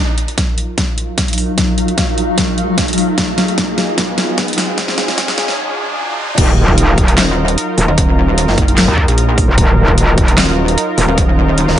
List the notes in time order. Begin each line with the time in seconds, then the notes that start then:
Already playing: F#3 D#4 F4 A#4, riser
0.01 F#3
0.18 closed hi-hat
0.28 F5, closed hi-hat
0.38 kick, snare, closed hi-hat
0.58 closed hi-hat
0.78 kick, snare, closed hi-hat
0.98 closed hi-hat
1.18 kick, snare, closed hi-hat
1.28 closed hi-hat
1.33 closed hi-hat
1.38 open hi-hat
1.58 kick, snare, closed hi-hat
1.78 closed hi-hat
1.88 closed hi-hat
1.98 kick, snare, closed hi-hat
2.18 closed hi-hat
2.38 kick, snare, closed hi-hat
2.58 closed hi-hat
2.78 kick, snare, closed hi-hat
2.88 closed hi-hat
2.93 closed hi-hat
2.98 open hi-hat
3.18 G#4, kick, snare, closed hi-hat
3.38 snare, closed hi-hat
3.48 closed hi-hat
3.58 kick, snare, closed hi-hat
3.78 snare, closed hi-hat
3.98 kick, snare, closed hi-hat
4.18 snare, closed hi-hat
4.38 kick, snare, closed hi-hat
4.48 closed hi-hat
4.53 closed hi-hat
4.58 snare, open hi-hat
4.78 kick, snare, closed hi-hat
4.88 snare
4.98 snare, closed hi-hat
5.08 snare, closed hi-hat
5.18 kick, snare, closed hi-hat
5.28 snare
5.38 snare, closed hi-hat
5.48 snare
6.38 D#1 F#3 D#4 F4 A#4, kick, closed hi-hat, crash
6.68 kick
6.78 closed hi-hat
6.98 kick, closed hi-hat
7.08 closed hi-hat
7.18 D#1, snare, clap, closed hi-hat
7.48 closed hi-hat
7.58 closed hi-hat
7.78 D#1, open hi-hat
7.88 D#1
7.98 kick, closed hi-hat
8.38 closed hi-hat
8.48 F#1, snare
8.58 kick, closed hi-hat
8.68 closed hi-hat
8.78 snare, clap, closed hi-hat
8.88 D#2
8.98 kick
9.08 A#1, closed hi-hat
9.18 closed hi-hat
9.38 kick, open hi-hat
9.48 F#1
9.58 D#1, kick, closed hi-hat
9.88 kick
9.98 closed hi-hat
10.18 kick, closed hi-hat
10.28 closed hi-hat
10.38 D#1, snare, clap, closed hi-hat
10.68 closed hi-hat
10.78 closed hi-hat
10.98 D#1, open hi-hat
11.08 D#1
11.18 kick, closed hi-hat
11.58 closed hi-hat
11.68 D#1, snare